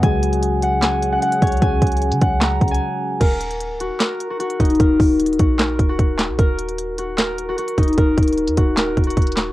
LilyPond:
<<
  \new Staff \with { instrumentName = "Harp" } { \time 4/4 \key ees \minor \tempo 4 = 151 aes''4. ges''8 aes''8. ges''16 ges''8 des''8 | aes''4. ges''8 bes''8. aes''4~ aes''16 | bes'4. ges'8 bes'8. ges'16 ges'8 ees'8 | bes'4. ges'8 bes'8. ges'4~ ges'16 |
bes'4. ges'8 bes'8. ges'16 ges'8 ees'8 | bes'4. ges'8 bes'8. ges'4~ ges'16 | }
  \new Staff \with { instrumentName = "Analog synth pad" } { \time 4/4 \key ees \minor <des des' aes' ges''>1~ | <des des' aes' ges''>1 | r1 | r1 |
r1 | r1 | }
  \new Staff \with { instrumentName = "Synth keys" } { \clef bass \time 4/4 \key ees \minor <des ges aes ges' aes'>1~ | <des ges aes ges' aes'>1 | r1 | r1 |
r1 | r1 | }
  \new Staff \with { instrumentName = "808-style bass" } { \clef bass \time 4/4 \key ees \minor des,2. r8 des,8 | des,8 des,8. des16 des,4 des,8 r4 | ees,,4~ ees,,16 des,,16 ees,,16 r4. r16 ees,,8 | ees,,8 ees,,4 bes,,4 ees,,8 ees,,8. bes,,16 |
ees,,2. r8 ees,,8 | ees,,8 ees,,8. ees,16 ees,,4 ees,,8 ees,,4 | }
  \new DrumStaff \with { instrumentName = "Drums" } \drummode { \time 4/4 <hh bd>8 hh16 hh16 hh8 hh8 <hc hh sn>8 hh8 hh16 hh16 <hh bd>32 hh32 hh32 hh32 | <hh bd>8 <hh bd>32 hh32 hh32 hh32 hh16 hh16 <hh bd>8 \tuplet 3/2 { <hc hh sn>16 r16 r16 <hh bd>16 hh16 hh16 } r4 | <cymc hh bd>8 hh16 hh16 hh8 hh8 <hc hh sn>8 hh8 hh16 hh16 <hh bd>32 hh32 hh32 hh32 | <hh bd>8 <hho bd>8 \tuplet 3/2 { hh16 hh16 hh16 <hh bd>16 r16 r16 } <hc hh sn>8 <hh bd>8 <hh bd>8 <hc hh sn>8 |
<hh bd>8 hh16 hh16 hh8 hh8 <hc hh sn>8 hh8 hh16 hh16 <hh bd>32 hh32 hh32 hh32 | <hh bd>8 <hh bd>32 hh32 hh32 hh32 hh16 hh16 <hh bd>8 \tuplet 3/2 { <hc hh sn>16 r16 r16 <hh bd>16 hh16 hh16 } <hh bd>32 hh32 hh32 hh32 <hc hh sn>8 | }
>>